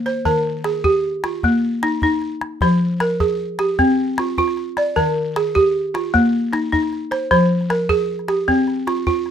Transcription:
0.06 balafon C5, calabash click
0.25 balafon D#3 A#4, calabash thump
0.64 balafon G#4, calabash click
0.84 balafon G4, calabash thump
1.24 balafon F4, calabash click
1.43 balafon A#3, calabash thump
1.83 balafon D#4, calabash click
2.02 balafon D#4, calabash thump
2.12 calabash click
2.22 calabash click
2.41 calabash click
2.61 balafon F3 C5, calabash thump
3.00 balafon A#4, calabash click
3.20 balafon G#4, calabash thump
3.59 balafon G4, calabash click
3.79 balafon C4, calabash thump
4.18 balafon F4, calabash click
4.38 balafon F4, calabash thump
4.48 calabash click
4.57 calabash click
4.77 balafon D5, calabash click
4.96 balafon D#3 A#4, calabash thump
5.36 balafon G#4, calabash click
5.55 balafon G4, calabash thump
5.94 balafon F4, calabash click
6.14 balafon A#3, calabash thump
6.53 balafon D#4, calabash click
6.72 balafon D#4, calabash thump
6.83 calabash click
6.93 calabash click
7.11 balafon C5, calabash click
7.31 balafon F3 C5, calabash thump
7.61 calabash click
7.70 balafon A#4, calabash click
7.89 balafon G#4, calabash thump
8.19 calabash click
8.28 balafon G4, calabash click
8.48 balafon C4, calabash thump
8.68 calabash click
8.87 balafon F4, calabash click
8.97 calabash click
9.07 balafon F4, calabash thump
9.26 calabash click

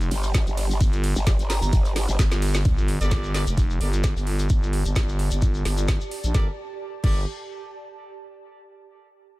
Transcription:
Already playing: ambient pad G4 D5 C6
0.01 closed hi-hat, shekere
0.11 wobble bass G1, snare, closed hi-hat, open hi-hat, ride
0.23 snare, closed hi-hat, shekere
0.34 kick, snare, closed hi-hat, ride, shekere
0.47 wobble bass G1, closed hi-hat, shekere
0.57 closed hi-hat, open hi-hat, ride
0.70 shekere
0.81 fm bass G1, kick, closed hi-hat, ride, shekere
0.93 closed hi-hat, shekere
1.03 closed hi-hat, open hi-hat, ride
1.16 wobble bass G1, closed hi-hat, shekere
1.27 kick, snare, closed hi-hat, ride, shekere
1.39 snare, closed hi-hat, shekere
1.50 synth bell A#5, snare, closed hi-hat, open hi-hat, ride
1.62 fm bass G1, synth bell A#5, snare, closed hi-hat, shekere
1.72 wobble bass G1, kick, snare, closed hi-hat, ride, shekere
1.85 snare, closed hi-hat, shekere
1.96 snare, closed hi-hat, open hi-hat, ride
2.08 wobble bass G1, snare, closed hi-hat, shekere
2.18 fm bass G1, kick, snare, closed hi-hat, ride, shekere
2.31 snare, closed hi-hat, shekere
2.42 snare, closed hi-hat, open hi-hat, ride
2.48 snare, closed hi-hat
2.54 snare, closed hi-hat, shekere
2.60 snare, closed hi-hat
2.65 fm bass G1, ambient pad G4, kick, closed hi-hat, impact, shekere
2.78 shekere
2.88 closed hi-hat, open hi-hat
3.01 fm bass G1, horn section G4 A4 A#4 D5, ambient pad D5 A5, closed hi-hat, shekere
3.11 kick, snare, closed hi-hat, shekere
3.24 shekere
3.34 horn section G4 A4 A#4 D5, snare, closed hi-hat, open hi-hat
3.47 fm bass F1, closed hi-hat, shekere
3.58 kick, closed hi-hat, shekere
3.70 shekere
3.80 fm bass G1, horn section G4 A4 A#4 D5, snare, closed hi-hat, open hi-hat
3.93 snare, closed hi-hat, shekere
4.04 kick, snare, closed hi-hat, shekere
4.16 fm bass G1, snare, closed hi-hat, shekere
4.27 open hi-hat
4.39 closed hi-hat, shekere
4.49 fm bass G1, kick, closed hi-hat, shekere
4.63 shekere
4.73 open hi-hat
4.85 fm bass G1, closed hi-hat, shekere
4.96 kick, snare, closed hi-hat, shekere
5.09 shekere
5.19 open hi-hat
5.31 fm bass G1, closed hi-hat, shekere
5.42 kick, closed hi-hat, shekere
5.54 shekere
5.65 fm bass G1, snare, open hi-hat
5.77 closed hi-hat, shekere
5.88 kick, snare, closed hi-hat, shekere
6.01 shekere
6.11 open hi-hat
6.24 fm bass A#1, closed hi-hat, shekere
6.34 fm bass G1, horn section G4 A4 A#4 D5, ambient pad G4, kick, snare
6.42 ambient pad D5
6.49 ambient pad A5
7.04 fm bass G1, horn section G4 A4 A#4 D5, kick, crash

